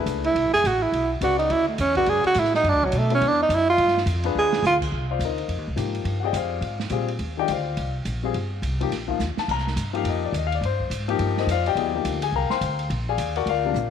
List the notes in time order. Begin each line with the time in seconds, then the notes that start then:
Already playing: A3 D4 G#4 B4
0.06 C#2, hi-hat pedal, ride
0.24 E4, ride
0.35 B1, ride
0.45 A1
0.54 F#1 G#4, snare
0.64 A1 F#4, hi-hat pedal, ride
0.83 E4
0.92 B1, ride
1.21 C#2 C#3 F#4 B4 D5, hi-hat pedal, ride
1.39 D#4, ride
1.50 D2 E4, ride
1.69 A3
1.78 E2 C#4, hi-hat pedal, ride
1.95 C#3 F#4 B4 D5, kick, ride
2.06 F#2 G#4, ride
2.24 F#4, muted upright bass stroke, ride
2.34 A2, hi-hat pedal, ride
2.40 E4
2.44 snare
2.54 D#4, snare
2.64 F#2, ride
2.69 D4
2.73 D2
2.83 B1 F#3
2.92 B2, hi-hat pedal, ride
2.98 A3
3.10 B3 E4 A4 C#5, ride
3.15 C#4
3.21 E2, ride
3.28 D4
3.43 D#4
3.49 F#2, hi-hat pedal, ride
3.55 E4
3.70 F4
3.78 G2, ride
3.88 snare
3.97 snare
4.06 F2, hi-hat pedal, ride
4.23 D4 F4 G#4 B4, ride
4.35 D#2 G#4
4.53 snare
4.63 D2 F4, snare, hi-hat pedal
4.81 kick, crash
4.92 C2
5.11 F4 C5 D5 F5
5.19 D2, hi-hat pedal, ride
5.25 D#4 A#4 C5 D#5
5.38 ride
5.48 F2, ride
5.58 D#2
5.68 C2
5.76 G#2 F3 A#3 D#4 G4, hi-hat pedal, ride
5.95 ride
6.05 G2, ride
6.20 C4 G4 F#5
6.24 F4 G#4 D5 D#5 G5
6.33 F2 D5 F5, hi-hat pedal, ride
6.37 F4 C5
6.61 G#2, ride
6.80 snare
6.90 A#2 G3 C4 F4 G#4, hi-hat pedal, ride
7.08 ride
7.19 D#2, ride
7.37 D#3 G#3 D4 F4 G4 D5 D#5 G5
7.48 D2 F4 C5 D5 F5, hi-hat pedal, ride
7.77 C2, ride
8.05 A#1, hi-hat pedal, ride
8.23 G3 C4 F4 G#4
8.34 G1, ride
8.62 C2, hi-hat pedal, ride
8.81 F3 A#3 D#4 G4, ride
8.90 A#1, snare, ride
9.08 F3 A#3 D#4 F4, kick
9.20 D#2, snare, hi-hat pedal
9.37 A5, muted upright bass stroke, snare
9.48 C2 A#5, kick, crash
9.58 snare
9.67 snare
9.76 G2, hi-hat pedal, ride
9.93 F3 A#3 D#4 G4 F5, ride
10.04 F2, ride
10.10 D#5
10.25 D5
10.32 D#2, hi-hat pedal, ride
10.38 D#5
10.47 F5
10.52 D5, ride
10.61 G2, ride
10.65 C5
10.80 kick
10.90 G#2, hi-hat pedal, ride
11.08 F3 A#3 D#4 G4, ride
11.19 G2, ride
11.37 D#4 A#4 C5 D#5, snare
11.47 F2, hi-hat pedal, ride
11.51 F4 C5 D5 F5
11.66 G4 D5 D#5 G5, ride
11.75 D#2 F#3 B3 E4 G#4, ride
11.94 F3 A#3 D#4 G4
12.05 D2, hi-hat pedal, ride
12.22 G#4 G#5, ride
12.32 C2 A#4 F5 G5 A#5
12.50 C5 F5 G5 C6, muted upright bass stroke, snare
12.61 D2, hi-hat pedal, ride
12.79 ride
12.90 A#1, ride
13.09 G#4 D5 F5 G#5
13.18 D#2, hi-hat pedal, ride
13.36 F#4 A#4 D5 F#5, ride
13.46 D2 F5, ride
13.50 F4 A#4 D5
13.64 C3 F3 A#3 D4
13.74 A#1, hi-hat pedal